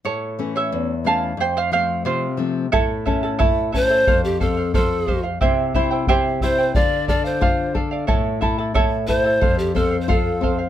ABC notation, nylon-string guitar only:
X:1
M:2/4
L:1/8
Q:1/4=90
K:Aphr
V:1 name="Nylon-string guitar"
A,, [E,A,^C] E,, [E,A,C] | F,, [F,A,C] C, [F,A,C] | A,, ^C E C | F,, C F C |
C, E G E | D, A F A | A,, E A E | F,, C F C |]